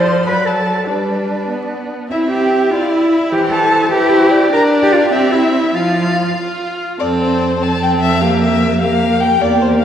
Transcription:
Already playing: F3 C5 D5 C6
0.27 F#3 B4 D5 B5
0.47 A4 A5
0.87 G3 D4 B4 D5
1.49 B3
2.10 C4 E4 E5
2.30 G4 G5
2.71 E4 F4 D5 F5
2.92 E4 E5
3.32 E3 G4 C5 G5
3.51 A4 A5
3.92 E4 G4 B4 G5
4.12 C5
4.31 D5
4.52 D4 A#4 A#5
4.83 G4 G5
4.93 F4 F5
5.13 C4 G4 E5 G5
5.33 E4 E5
5.75 F3 F4 F5
6.38 F4
7.00 F2 C4 A4 D5
7.21 C5
7.60 C4 A4 A5
7.83 G5
8.01 E5
8.21 A#3 G4 F5
8.42 E5
8.80 A#3 G4 F5
9.21 G5
9.40 E2 A#3 G4 D5
9.62 C5
9.80 F5

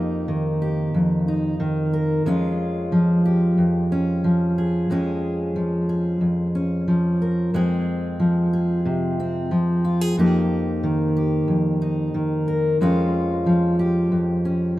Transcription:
Already playing: F2 A#3 D#4 G4
0.28 D#3
0.62 G4
0.94 F2
1.28 D#4
1.60 D#3
1.93 A#4
2.26 F2 G#3 C#4 F4
2.92 F3
3.26 G4
3.58 F2
3.92 C#4
4.24 F3
4.58 G#4
4.90 F2 G#3 C#4 G#4
5.56 F3
5.89 G#4
6.21 F2
6.55 C#4
6.88 F3
7.22 A#4
7.54 F2 G#3 C4 G#4
8.20 F3
8.53 G#4
8.85 C3
9.20 C4
9.51 F3
9.84 F4
10.01 G#4
10.18 F2 A#3 D#4 G4
10.83 D#3
11.17 G4
11.48 F2
11.82 D#4
12.14 D#3
12.48 A#4
12.81 F2 G#3 C#4 F4
13.46 F3
13.79 G4
14.12 F2
14.45 C#4

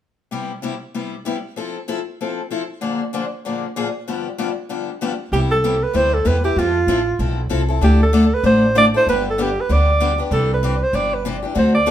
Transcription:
0.31 C3 G3 B3 E4 G4
0.62 C3 G3 B3 E4 G4
0.94 C3 G3 B3 E4 G4
1.25 C3 G3 B3 E4 G4
1.56 F3 C4 E4 A4
1.88 F3 C4 E4 A4
2.21 F3 C4 E4 A4
2.51 F3 C4 E4 A4
2.81 A#2 D3 F3 A#3 D4 G#4
3.13 A#2 D3 F3 A#3 D4 G#4
3.45 A#2 D3 F3 A#3 D4 G#4
3.76 A#2 D3 F3 A#3 D4 G#4
4.08 G2 D3 F3 B3 D4 G4
4.38 G2 D3 F3 B3 D4 G4
4.69 G2 D3 F3 B3 D4 G4
5.01 G2 D3 F3 B3 D4 G4
5.32 C2 C3 G3 B3 E4 G4
5.51 A4
5.64 C3 G3 B3 E4 G4
5.83 B4
5.94 D2 C3 G3 B3 E4 G4 C5
6.14 A4
6.25 E2 C3 G3 B3 E4 G4 B4
6.44 B3 E4 G4
6.56 F2 F3 C4 E4 F4 A4
6.87 A1 F3 C4 E4 A4
7.19 B1 F3 C4 E4 A4
7.49 C2 F3 C4 E4 A4
7.68 C4 E4 A4
7.81 D2 D3 A3 D4 E4 G4 A4
8.03 A4
8.13 D3 A3 D4 E4 A4
8.34 B4
8.43 A1 D3 A3 D4 E4 A4 C5
8.75 D3 A3 D4 E4 A4 D5
8.94 D4 E4 A4 C5
9.07 G1 D3 G3 B3 D4 G4 B4
9.30 A4
9.38 D3 G3 B3 D4 G4
9.61 B4
9.69 D2 D3 G3 B3 D4 G4 D5
10.00 D3 G3 B3 D4 G4
10.18 B3 D4 G4
10.31 C2 C3 E3 D4 G4 A4
10.54 B4
10.63 C3 E3 D4 G4
10.83 C5
10.93 G1 C3 E3 D4 G4 D5
11.14 B4
11.25 C3 E3 D4 G4
11.43 E3 D4 G4
11.55 D2 D3 A3 C4 F#4 A4 C5
11.75 D5
11.86 D3 A3 C4 F#4 A4

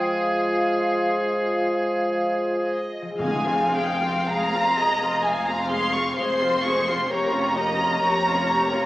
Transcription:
Already playing: F3 G#3 C4 F4 G#4 F5
2.68 D#5
3.02 F3
3.06 G#3
3.11 C4
3.15 F2 F4
3.21 F1 F2 G#3 G#4 F5 G#5
3.46 C4 F4
3.74 G#3 G#4 G5
4.01 C4 F4
4.27 F1 F2 G#3 G#4 F5 A#5
4.52 C4 F4
4.77 G#3 G#4 D#5
5.01 C4 F4
5.23 F1 F2 G#3 G#4 F5 G#5
5.47 C4 F4 A#5
5.71 G#3 G#4 C6
5.93 C4 F4 C#6
6.17 F1 F2 G#3 G#4 C5 C6
6.41 C4 F4
6.64 G#3 G#4 C#6
6.87 C4 F4 C6
6.91 F3
6.96 A#3
7.00 C#4
7.04 G4
7.09 F1 F2 A#3 G4 C#5 A#5
7.31 C#4 F4
7.54 A#3 G4 D#5
7.77 C#4 F4
8.00 F1 F2 A#3 G4 C#5
8.25 C#4 F4
8.49 A#3 G4
8.72 C#4 F4

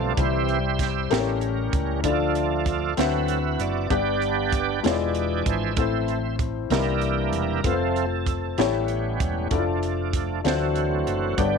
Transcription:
Already playing: B1 G2 F3 G3 A3 C4 F4 A4 D5
0.17 C2 C3 E3 G3 C4 E4 G4 C5 E5, kick, closed hi-hat
0.49 closed hi-hat
0.79 kick, snare, closed hi-hat
1.10 A1 A2 G3 A3 A#3 C#4 G4 A#4, snare, closed hi-hat
1.17 C#4
1.41 closed hi-hat
1.73 C#2, kick, closed hi-hat
2.03 D2 D3 F3 A3 D4 E4 F4 A4 D5, kick, closed hi-hat
2.11 F4
2.35 closed hi-hat
2.66 kick, closed hi-hat
2.97 D2 D3 F#3 A3 C4 E4 F#4 B4 E5, snare, closed hi-hat
3.28 closed hi-hat
3.59 F#1 D5, closed hi-hat
3.90 G1 G2 G3 B3 D4 G4 B4 D5, kick, closed hi-hat
4.22 closed hi-hat
4.52 kick, closed hi-hat
4.84 E1 E3 G#3 D4 E4 F4 G#4 C#5, snare, closed hi-hat
4.92 D5
5.15 closed hi-hat
5.46 G#1 C5 E5, kick, closed hi-hat
5.77 A1 A2 E3 A3 C4 E4 C5, kick, closed hi-hat
6.08 closed hi-hat
6.39 kick, closed hi-hat
6.70 C2 C3 E3 G3 A#3 C4 D4 D#4 E4 G4 A#4, snare, closed hi-hat
6.78 E4
7.01 closed hi-hat
7.32 E1, closed hi-hat
7.64 F1 F3 A3 C4 F4 A4 B4, kick, closed hi-hat
7.72 C5
7.96 closed hi-hat
8.26 kick, closed hi-hat
8.58 A1 A2 G3 A3 B3 C#4 E4 G4 C#5, snare, closed hi-hat
8.88 closed hi-hat
9.20 E1, kick, closed hi-hat
9.51 F1 F3 A3 D4 E4 D5, kick, closed hi-hat
9.58 F4
9.83 closed hi-hat
10.13 kick, closed hi-hat
10.44 D2 D3 E3 F#3 A3 C4 D4 F4 F#4 C5, snare, closed hi-hat
10.52 F#4
10.75 closed hi-hat
11.07 F#1, closed hi-hat
11.37 G1 G2 D3 G3 B3 D4 G4 C#5, kick, closed hi-hat
11.46 D5

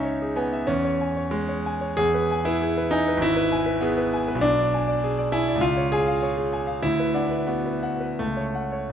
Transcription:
Already playing: C#2 C#4 D#4 C#5 E5 G#5
0.05 C#5
0.22 G#4
0.36 B3 G#5
0.53 E5
0.67 E2 C#4
0.84 C#5
1.01 G#5
1.17 C#5
1.31 G#3 G#4
1.49 C#5
1.66 G#5
1.81 C#5
1.97 E2 G#4
2.14 B4
2.31 G#5
2.45 E4 B4
2.62 G#4
2.77 B4
2.91 D#4 G#5
3.08 B4
3.17 G#1
3.22 E4
3.36 B4
3.52 G#5
3.66 B4
3.81 B3 G#4
3.98 B4
4.13 G#5
4.28 B4
4.35 B1
4.41 D4
4.59 D5
4.74 G#5
4.88 D5
5.04 G#4
5.18 D5
5.32 E4 G#5
5.48 D5
5.56 C#2
5.61 F4
5.77 C#5
5.92 G#4 G#5
6.07 F5
6.22 C#5
6.37 G#4
6.53 G#5
6.67 F5
6.82 D2 E4
7.00 B4
7.14 D4 F#5
7.31 B4
7.46 B3 F#4
7.65 B4
7.83 F#5
8.00 B4
8.19 C#2 A3
8.37 C#5
8.55 F#5
8.72 C#5

